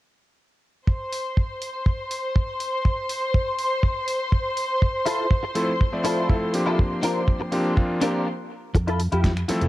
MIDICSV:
0, 0, Header, 1, 8, 480
1, 0, Start_track
1, 0, Key_signature, -1, "major"
1, 0, Tempo, 491803
1, 861, Time_signature, 4, 2, 24, 8
1, 9453, End_track
2, 0, Start_track
2, 0, Title_t, "String section"
2, 0, Program_c, 0, 48
2, 855, Note_on_c, 0, 72, 74
2, 856, Note_on_c, 0, 84, 70
2, 8058, Note_off_c, 0, 72, 0
2, 8058, Note_off_c, 0, 84, 0
2, 9453, End_track
3, 0, Start_track
3, 0, Title_t, "Clean electric guitar"
3, 0, Program_c, 1, 27
3, 4936, Note_on_c, 1, 64, 103
3, 4942, Note_on_c, 1, 65, 95
3, 4947, Note_on_c, 1, 69, 112
3, 5120, Note_off_c, 1, 64, 0
3, 5123, Note_off_c, 1, 65, 0
3, 5126, Note_off_c, 1, 69, 0
3, 5894, Note_on_c, 1, 64, 101
3, 5901, Note_on_c, 1, 65, 94
3, 5905, Note_on_c, 1, 69, 116
3, 6200, Note_off_c, 1, 64, 0
3, 6203, Note_off_c, 1, 65, 0
3, 6205, Note_off_c, 1, 69, 0
3, 6499, Note_on_c, 1, 64, 74
3, 6505, Note_on_c, 1, 65, 69
3, 6511, Note_on_c, 1, 69, 84
3, 6618, Note_off_c, 1, 64, 0
3, 6620, Note_off_c, 1, 65, 0
3, 6624, Note_off_c, 1, 69, 0
3, 6857, Note_on_c, 1, 60, 104
3, 6862, Note_on_c, 1, 65, 86
3, 6863, Note_on_c, 1, 62, 85
3, 6871, Note_on_c, 1, 70, 102
3, 7041, Note_off_c, 1, 60, 0
3, 7043, Note_off_c, 1, 62, 0
3, 7044, Note_off_c, 1, 65, 0
3, 7046, Note_off_c, 1, 70, 0
3, 7819, Note_on_c, 1, 60, 100
3, 7823, Note_on_c, 1, 62, 97
3, 7826, Note_on_c, 1, 65, 97
3, 7832, Note_on_c, 1, 70, 107
3, 8060, Note_off_c, 1, 60, 0
3, 8062, Note_off_c, 1, 62, 0
3, 8064, Note_off_c, 1, 65, 0
3, 8065, Note_off_c, 1, 70, 0
3, 8661, Note_on_c, 1, 64, 94
3, 8667, Note_on_c, 1, 65, 91
3, 8674, Note_on_c, 1, 69, 106
3, 8779, Note_off_c, 1, 64, 0
3, 8782, Note_off_c, 1, 65, 0
3, 8785, Note_off_c, 1, 69, 0
3, 8900, Note_on_c, 1, 64, 82
3, 8906, Note_on_c, 1, 65, 75
3, 8911, Note_on_c, 1, 67, 89
3, 9080, Note_off_c, 1, 64, 0
3, 9083, Note_off_c, 1, 65, 0
3, 9086, Note_off_c, 1, 67, 0
3, 9453, End_track
4, 0, Start_track
4, 0, Title_t, "Electric grand piano"
4, 0, Program_c, 2, 2
4, 5417, Note_on_c, 2, 53, 74
4, 5419, Note_on_c, 2, 57, 76
4, 5423, Note_on_c, 2, 60, 74
4, 5426, Note_on_c, 2, 64, 75
4, 5427, Note_on_c, 2, 69, 86
4, 5562, Note_off_c, 2, 53, 0
4, 5563, Note_off_c, 2, 57, 0
4, 5565, Note_off_c, 2, 60, 0
4, 5567, Note_off_c, 2, 64, 0
4, 5567, Note_off_c, 2, 69, 0
4, 5781, Note_on_c, 2, 53, 70
4, 5785, Note_on_c, 2, 57, 63
4, 5787, Note_on_c, 2, 60, 66
4, 5789, Note_on_c, 2, 76, 64
4, 5791, Note_on_c, 2, 74, 76
4, 6111, Note_off_c, 2, 53, 0
4, 6113, Note_off_c, 2, 57, 0
4, 6114, Note_off_c, 2, 60, 0
4, 6115, Note_off_c, 2, 76, 0
4, 6116, Note_off_c, 2, 74, 0
4, 6136, Note_on_c, 2, 53, 72
4, 6140, Note_on_c, 2, 57, 66
4, 6143, Note_on_c, 2, 60, 64
4, 6145, Note_on_c, 2, 64, 69
4, 6146, Note_on_c, 2, 69, 80
4, 6351, Note_off_c, 2, 53, 0
4, 6353, Note_off_c, 2, 57, 0
4, 6354, Note_off_c, 2, 60, 0
4, 6355, Note_off_c, 2, 64, 0
4, 6356, Note_off_c, 2, 69, 0
4, 6372, Note_on_c, 2, 53, 74
4, 6375, Note_on_c, 2, 58, 66
4, 6382, Note_on_c, 2, 60, 64
4, 6386, Note_on_c, 2, 62, 66
4, 6391, Note_on_c, 2, 67, 82
4, 7308, Note_off_c, 2, 53, 0
4, 7310, Note_off_c, 2, 58, 0
4, 7313, Note_off_c, 2, 60, 0
4, 7316, Note_off_c, 2, 62, 0
4, 7318, Note_off_c, 2, 67, 0
4, 7335, Note_on_c, 2, 53, 89
4, 7337, Note_on_c, 2, 58, 82
4, 7341, Note_on_c, 2, 60, 77
4, 7342, Note_on_c, 2, 62, 77
4, 7345, Note_on_c, 2, 67, 91
4, 7550, Note_off_c, 2, 53, 0
4, 7551, Note_off_c, 2, 58, 0
4, 7553, Note_off_c, 2, 60, 0
4, 7553, Note_off_c, 2, 62, 0
4, 7555, Note_off_c, 2, 67, 0
4, 7576, Note_on_c, 2, 53, 74
4, 7578, Note_on_c, 2, 58, 72
4, 7581, Note_on_c, 2, 60, 75
4, 7583, Note_on_c, 2, 62, 75
4, 7584, Note_on_c, 2, 65, 84
4, 7791, Note_off_c, 2, 53, 0
4, 7792, Note_off_c, 2, 58, 0
4, 7793, Note_off_c, 2, 60, 0
4, 7794, Note_off_c, 2, 62, 0
4, 7795, Note_off_c, 2, 65, 0
4, 7813, Note_on_c, 2, 53, 79
4, 7816, Note_on_c, 2, 58, 74
4, 7820, Note_on_c, 2, 60, 77
4, 7822, Note_on_c, 2, 62, 77
4, 7824, Note_on_c, 2, 67, 89
4, 8041, Note_off_c, 2, 53, 0
4, 8043, Note_off_c, 2, 58, 0
4, 8045, Note_off_c, 2, 60, 0
4, 8046, Note_off_c, 2, 62, 0
4, 8047, Note_off_c, 2, 67, 0
4, 9255, Note_on_c, 2, 53, 76
4, 9258, Note_on_c, 2, 57, 76
4, 9260, Note_on_c, 2, 60, 71
4, 9263, Note_on_c, 2, 64, 72
4, 9265, Note_on_c, 2, 69, 91
4, 9401, Note_off_c, 2, 53, 0
4, 9403, Note_off_c, 2, 57, 0
4, 9404, Note_off_c, 2, 60, 0
4, 9405, Note_off_c, 2, 64, 0
4, 9406, Note_off_c, 2, 69, 0
4, 9453, End_track
5, 0, Start_track
5, 0, Title_t, "Fingered electric bass"
5, 0, Program_c, 3, 33
5, 8537, Note_on_c, 3, 41, 88
5, 8843, Note_off_c, 3, 41, 0
5, 8906, Note_on_c, 3, 41, 82
5, 9205, Note_off_c, 3, 41, 0
5, 9386, Note_on_c, 3, 29, 93
5, 9453, Note_off_c, 3, 29, 0
5, 9453, End_track
6, 0, Start_track
6, 0, Title_t, "Muted clean electric guitar strokes"
6, 5300, Note_on_c, 9, 29, 81
6, 5397, Note_off_c, 9, 29, 0
6, 5415, Note_on_c, 9, 29, 30
6, 5513, Note_off_c, 9, 29, 0
6, 7220, Note_on_c, 9, 29, 84
6, 7318, Note_off_c, 9, 29, 0
6, 7336, Note_on_c, 9, 29, 31
6, 7434, Note_off_c, 9, 29, 0
6, 8537, Note_on_c, 9, 29, 106
6, 8635, Note_off_c, 9, 29, 0
6, 9255, Note_on_c, 9, 29, 78
6, 9353, Note_off_c, 9, 29, 0
6, 9378, Note_on_c, 9, 29, 31
6, 9453, Note_off_c, 9, 29, 0
6, 9453, End_track
7, 0, Start_track
7, 0, Title_t, "Muted fingered electric bass strokes"
7, 9262, Note_on_c, 9, 29, 42
7, 9360, Note_off_c, 9, 29, 0
7, 9453, End_track
8, 0, Start_track
8, 0, Title_t, "Drums"
8, 853, Note_on_c, 9, 36, 103
8, 951, Note_off_c, 9, 36, 0
8, 1099, Note_on_c, 9, 46, 87
8, 1196, Note_off_c, 9, 46, 0
8, 1339, Note_on_c, 9, 36, 102
8, 1436, Note_off_c, 9, 36, 0
8, 1578, Note_on_c, 9, 46, 94
8, 1676, Note_off_c, 9, 46, 0
8, 1815, Note_on_c, 9, 36, 104
8, 1913, Note_off_c, 9, 36, 0
8, 2058, Note_on_c, 9, 46, 93
8, 2155, Note_off_c, 9, 46, 0
8, 2301, Note_on_c, 9, 36, 107
8, 2398, Note_off_c, 9, 36, 0
8, 2539, Note_on_c, 9, 46, 97
8, 2637, Note_off_c, 9, 46, 0
8, 2782, Note_on_c, 9, 36, 112
8, 2880, Note_off_c, 9, 36, 0
8, 3019, Note_on_c, 9, 46, 100
8, 3117, Note_off_c, 9, 46, 0
8, 3263, Note_on_c, 9, 36, 117
8, 3360, Note_off_c, 9, 36, 0
8, 3500, Note_on_c, 9, 46, 102
8, 3598, Note_off_c, 9, 46, 0
8, 3740, Note_on_c, 9, 36, 104
8, 3837, Note_off_c, 9, 36, 0
8, 3980, Note_on_c, 9, 46, 94
8, 4078, Note_off_c, 9, 46, 0
8, 4220, Note_on_c, 9, 36, 113
8, 4318, Note_off_c, 9, 36, 0
8, 4461, Note_on_c, 9, 46, 94
8, 4559, Note_off_c, 9, 46, 0
8, 4705, Note_on_c, 9, 36, 106
8, 4803, Note_off_c, 9, 36, 0
8, 4942, Note_on_c, 9, 46, 100
8, 5040, Note_off_c, 9, 46, 0
8, 5180, Note_on_c, 9, 36, 117
8, 5278, Note_off_c, 9, 36, 0
8, 5422, Note_on_c, 9, 46, 97
8, 5519, Note_off_c, 9, 46, 0
8, 5669, Note_on_c, 9, 36, 107
8, 5767, Note_off_c, 9, 36, 0
8, 5901, Note_on_c, 9, 46, 103
8, 5998, Note_off_c, 9, 46, 0
8, 6144, Note_on_c, 9, 36, 118
8, 6241, Note_off_c, 9, 36, 0
8, 6380, Note_on_c, 9, 46, 100
8, 6478, Note_off_c, 9, 46, 0
8, 6628, Note_on_c, 9, 36, 101
8, 6725, Note_off_c, 9, 36, 0
8, 6861, Note_on_c, 9, 46, 97
8, 6959, Note_off_c, 9, 46, 0
8, 7102, Note_on_c, 9, 36, 103
8, 7200, Note_off_c, 9, 36, 0
8, 7341, Note_on_c, 9, 46, 99
8, 7438, Note_off_c, 9, 46, 0
8, 7584, Note_on_c, 9, 36, 108
8, 7682, Note_off_c, 9, 36, 0
8, 7822, Note_on_c, 9, 46, 101
8, 7920, Note_off_c, 9, 46, 0
8, 8536, Note_on_c, 9, 36, 116
8, 8541, Note_on_c, 9, 42, 89
8, 8634, Note_off_c, 9, 36, 0
8, 8638, Note_off_c, 9, 42, 0
8, 8665, Note_on_c, 9, 42, 36
8, 8762, Note_off_c, 9, 42, 0
8, 8780, Note_on_c, 9, 46, 94
8, 8878, Note_off_c, 9, 46, 0
8, 8903, Note_on_c, 9, 42, 36
8, 9001, Note_off_c, 9, 42, 0
8, 9018, Note_on_c, 9, 36, 105
8, 9019, Note_on_c, 9, 42, 85
8, 9023, Note_on_c, 9, 38, 113
8, 9116, Note_off_c, 9, 36, 0
8, 9117, Note_off_c, 9, 42, 0
8, 9121, Note_off_c, 9, 38, 0
8, 9144, Note_on_c, 9, 26, 77
8, 9144, Note_on_c, 9, 42, 38
8, 9242, Note_off_c, 9, 26, 0
8, 9242, Note_off_c, 9, 42, 0
8, 9260, Note_on_c, 9, 46, 101
8, 9263, Note_on_c, 9, 38, 58
8, 9357, Note_off_c, 9, 46, 0
8, 9361, Note_off_c, 9, 38, 0
8, 9384, Note_on_c, 9, 42, 38
8, 9453, Note_off_c, 9, 42, 0
8, 9453, End_track
0, 0, End_of_file